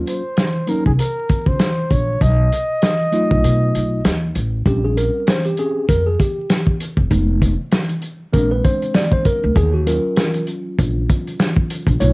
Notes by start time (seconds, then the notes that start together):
Already playing: F#3 A#3 C#4 F4
0.07 C5, closed hi-hat
0.37 snare, closed hi-hat
0.67 F#3 A#3 C#4 D#4 A#4, closed hi-hat
0.86 C2 G#4, kick
0.99 A#4, closed hi-hat
1.29 kick, closed hi-hat
1.46 C#2 C5, kick
1.59 snare, closed hi-hat
1.90 A#1 C#5, kick, closed hi-hat
2.21 B1 D#5, kick, closed hi-hat
2.52 closed hi-hat
2.82 snare, closed hi-hat
3.12 F#3 A3 D#4 F4, closed hi-hat
3.31 B1, kick
3.44 B2, closed hi-hat
3.75 B1, closed hi-hat
4.05 D#2, snare, closed hi-hat
4.35 A1, closed hi-hat
4.66 A#1 G3 C4 C#4 G4, kick, closed hi-hat
4.84 G#4
4.97 A#4, closed hi-hat
5.27 C5, snare, closed hi-hat
5.44 G4, closed hi-hat
5.57 C4 C#4 G4 G#4, closed hi-hat
5.89 F2 A#4, kick, closed hi-hat
6.07 G#4
6.20 G4, kick, closed hi-hat
6.50 snare, closed hi-hat
6.67 kick
6.80 closed hi-hat
6.97 E1, kick
7.10 F1 G#3 B3 D#4, kick, closed hi-hat
7.42 kick, closed hi-hat
7.71 snare, closed hi-hat
7.89 closed hi-hat
8.02 closed hi-hat
8.33 A#1 G#3 C4 D4 A#4, kick, closed hi-hat
8.51 B4
8.64 C5, kick, closed hi-hat
8.82 closed hi-hat
8.94 D5, snare, closed hi-hat
9.12 C5, kick
9.25 A#4, kick, closed hi-hat
9.43 D2
9.56 D#2 G#4, kick, closed hi-hat
9.74 F#4
9.86 F#3 C#4 F4 A#4, closed hi-hat
10.16 snare, closed hi-hat
10.34 closed hi-hat
10.47 closed hi-hat
10.79 A#1, kick, closed hi-hat
11.09 kick, closed hi-hat
11.27 closed hi-hat
11.39 snare, closed hi-hat
11.56 kick
11.70 closed hi-hat
11.87 A#1, kick, closed hi-hat
12.00 B1 A3 D#4 F4 C#5, closed hi-hat